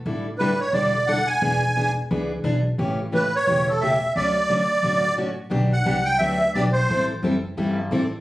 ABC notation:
X:1
M:4/4
L:1/16
Q:"Swing" 1/4=175
K:D
V:1 name="Accordion"
z4 B2 c2 d4 f2 ^g2- | ^g6 z8 z2 | z4 B2 c4 A2 e4 | d12 z4 |
[K:G] z2 f4 g2 e4 d2 c2- | c2 z12 z2 |]
V:2 name="Steel-string acoustic guitar"
[D,G,DEA]2 z2 [D,G,DEA] z3 [D,G,DEA]2 z2 [D,G,DEA] z3 | [E,B,D^G]2 z2 [E,B,DG] z3 [E,B,DG]2 z2 [E,B,DG] z3 | [C,E,A,CG]2 z2 [C,E,A,CG] z3 [C,E,A,CG]2 z2 [C,E,A,CG] z3 | [D,F,A,CF]2 z2 [D,F,A,CF] z3 [D,F,A,CF]2 z2 [D,F,A,CF] z3 |
[K:G] [D,F,B,DG]2 z2 [D,F,B,DG] z3 [D,F,B,DG]2 z2 [D,F,B,DG] z3 | [E,G,CEA]2 z2 [E,G,CEA] z3 [E,G,CEA]2 z2 [E,G,CEA] z3 |]
V:3 name="Upright bass" clef=bass
A,,,8 E,,,8 | E,,,8 C,,4 B,,,4 | A,,,8 E,,,8 | D,,8 A,,,8 |
[K:G] B,,,4 C,,4 D,,4 B,,,4 | A,,,4 F,,,4 G,,,4 A,,,4 |]